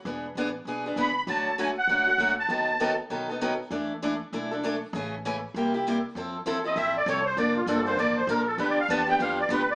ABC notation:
X:1
M:4/4
L:1/8
Q:"Swing" 1/4=197
K:Emix
V:1 name="Accordion"
z6 b b | a2 g f4 a- | a3 z4 z | z8 |
z8 | [K:F] z3 _e =e d _d c | d F A c d c B A | (3=B d f a g f d B d |]
V:2 name="Steel-string acoustic guitar"
[E,B,DG] z [E,B,DG] z [E,B,DG] [B,DG] [E,B,DG] z | [D,F,A,CF] z [D,F,A,CF] z [D,F,A,CF] [A,CF] [D,F,A,CF] z | [^D,F,B,^DA] z [D,F,B,DA] z [D,F,B,DA] [B,DA] [D,F,B,DA] z | [E,A,DEA] z [E,A,DEA] z [E,A,DEA] [DEA] [E,A,DEA] z |
[C,E,A,CG] z [C,E,A,CG] z [=C,=G,_B,E=G] [B,EG] [C,G,B,EG] z | [K:F] [F,CEA] z [F,CEA] [CEA] [F,CEA] z [F,CEA] z | [F,B,DA] z [F,B,DA] [B,DA] [F,B,DA] z [F,B,DA] z | [D,F,=B,DG] z [D,F,B,DG] [B,DG] [D,F,B,DG] z [D,F,B,DG] z |]
V:3 name="Upright bass" clef=bass
E,,,2 A,,,2 B,,,2 C,,2 | D,,4 C,,2 D,,2 | ^D,,4 B,,4 | E,,4 B,,,4 |
A,,,4 =C,,4 | [K:F] F,,2 E,,2 A,,,2 C,,2 | F,,,2 G,,,2 A,,,2 B,,,2 | D,, z E,,2 F,,2 D,,2 |]